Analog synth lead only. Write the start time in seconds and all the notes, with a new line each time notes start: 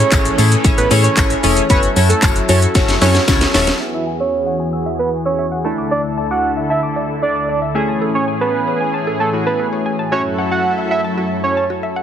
0.00 C#5
0.77 B4
1.03 C#5
1.70 B4
2.09 A4
2.49 C#5
3.02 C#5
3.94 E5
4.20 C#5
4.99 B4
5.25 C#5
5.91 D5
6.31 F#5
6.70 E5
7.22 D5
8.15 C#5
8.41 B4
9.20 A4
9.46 B4
10.12 C#5
10.51 F#5
10.91 E5
11.43 C#5